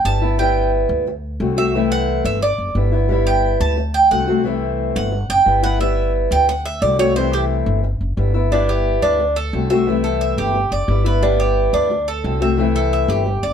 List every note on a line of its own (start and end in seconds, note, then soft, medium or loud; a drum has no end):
0.05 0.84 G1 medium
0.05 0.21 G3 medium
0.05 0.22 B3 soft
0.05 0.20 E4 medium
0.05 0.37 A5 loud
0.22 0.39 B3 medium
0.22 0.38 E4 medium
0.38 1.06 G3 medium
0.38 1.07 B3 medium
0.38 1.07 E4 medium
0.38 0.70 G5 medium
0.89 1.37 D2 loud
1.07 muted steel-string acoustic guitar stroke medium
1.40 2.19 C2 loud
1.40 1.56 D3 soft
1.40 1.57 A3 medium
1.40 1.56 C4 medium
1.40 1.55 F#4 medium
1.57 1.74 A3 medium
1.57 1.74 C4 medium
1.57 1.73 F#4 medium
1.57 1.89 E5 medium
1.73 2.41 C3 medium
1.73 2.41 E3 medium
1.73 2.41 A3 medium
1.73 2.42 C4 medium
1.73 2.42 E4 medium
1.92 2.23 F#5 loud
2.25 2.56 G1 medium
2.25 2.42 E5 medium
2.42 2.74 D5 medium
2.42 muted steel-string acoustic guitar stroke medium
2.58 2.74 F#1 medium
2.75 3.54 G1 medium
2.75 2.92 G3 medium
2.75 2.92 B3 medium
2.75 2.91 E4 medium
2.92 3.09 B3 medium
2.92 3.09 E4 medium
3.09 3.76 G3 medium
3.09 3.77 B3 medium
3.09 3.77 E4 medium
3.27 3.58 G5 medium
3.60 4.08 D2 loud
3.60 3.92 A5 loud
3.77 muted steel-string acoustic guitar stroke medium
3.94 4.11 G5 loud
4.11 4.90 C2 medium
4.11 4.27 D3 medium
4.11 4.28 A3 medium
4.11 4.28 C4 medium
4.11 4.26 F#4 medium
4.11 4.43 F#5 medium
4.27 4.44 A3 medium
4.27 4.45 C4 medium
4.27 4.44 F#4 medium
4.44 5.12 C3 medium
4.44 5.12 E3 medium
4.44 5.11 A3 medium
4.44 5.12 C4 medium
4.44 5.11 E4 medium
4.96 5.27 G1 medium
4.96 5.28 F#5 loud
5.12 muted steel-string acoustic guitar stroke medium
5.29 5.45 F#1 medium
5.29 5.61 G5 loud
5.45 6.26 G1 medium
5.45 5.62 G3 medium
5.45 5.63 B3 medium
5.45 5.61 E4 medium
5.63 5.80 B3 medium
5.63 5.79 E4 medium
5.63 5.80 F#5 loud
5.79 6.47 G3 medium
5.79 6.48 B3 medium
5.79 6.48 E4 medium
5.79 6.12 E5 medium
6.31 6.78 D2 loud
6.31 6.48 G5 loud
6.48 6.65 F#5 medium
6.48 muted steel-string acoustic guitar stroke medium
6.65 6.82 E5 loud
6.82 7.61 C2 loud
6.82 6.98 D3 soft
6.82 6.99 A3 soft
6.82 6.99 C4 medium
6.82 6.98 F#4 medium
6.82 6.99 D5 medium
6.99 7.16 A3 medium
6.99 7.16 C4 medium
6.99 7.15 F#4 medium
6.99 7.16 C#5 loud
7.15 7.82 C3 medium
7.15 7.83 E3 medium
7.15 7.83 A3 medium
7.15 7.84 C4 medium
7.15 7.83 E4 medium
7.15 7.33 C5 medium
7.33 7.44 G4 medium
7.66 7.98 G1 medium
7.84 muted steel-string acoustic guitar stroke medium
8.01 8.16 F#1 medium
8.17 8.96 G1 medium
8.17 8.34 G3 soft
8.17 8.34 B3 medium
8.17 8.33 E4 medium
8.34 8.51 B3 medium
8.34 8.51 E4 medium
8.51 9.18 G3 medium
8.51 9.19 B3 medium
8.51 8.68 D4 medium
8.51 9.20 E4 medium
8.69 9.02 G4 medium
9.02 9.50 D2 medium
9.02 9.35 D4 medium
9.20 muted steel-string acoustic guitar stroke medium
9.36 9.69 A4 medium
9.53 10.32 C2 medium
9.53 9.69 D3 soft
9.53 9.70 A3 soft
9.53 9.70 C4 medium
9.53 9.69 F#4 medium
9.70 9.87 A3 medium
9.70 9.87 C4 medium
9.70 9.86 F#4 medium
9.70 10.03 E5 medium
9.86 10.54 C3 medium
9.86 10.54 E3 medium
9.86 10.54 A3 medium
9.86 10.55 C4 medium
9.86 10.54 E4 medium
10.04 10.20 A4 medium
10.21 10.37 E5 medium
10.38 10.69 G1 medium
10.38 10.71 G4 medium
10.55 muted steel-string acoustic guitar stroke medium
10.71 10.87 F#1 medium
10.71 11.05 D5 medium
10.88 11.67 G1 loud
10.88 11.04 G3 soft
10.88 11.05 B3 soft
10.88 11.03 E4 medium
11.04 11.22 B3 medium
11.04 11.21 E4 medium
11.04 11.22 B4 medium
11.22 11.89 G3 medium
11.22 11.90 B3 medium
11.22 11.39 D4 medium
11.22 11.91 E4 medium
11.40 11.72 G4 medium
11.73 12.20 D2 medium
11.73 12.06 D4 medium
11.90 muted steel-string acoustic guitar stroke medium
12.08 12.40 A4 medium
12.24 13.03 C2 medium
12.24 12.40 D3 soft
12.24 12.40 A3 medium
12.24 12.40 C4 soft
12.24 12.39 F#4 medium
12.40 12.57 A3 medium
12.40 12.58 C4 medium
12.40 12.57 F#4 medium
12.40 12.74 E5 medium
12.57 13.25 C3 medium
12.57 13.25 E3 medium
12.57 13.25 A3 medium
12.57 13.26 C4 medium
12.57 13.25 E4 medium
12.76 12.92 A4 medium
12.93 13.09 E5 medium
13.08 13.40 G1 loud
13.08 13.42 G4 medium
13.26 muted steel-string acoustic guitar stroke medium
13.43 13.53 F#1 medium
13.43 13.53 D5 medium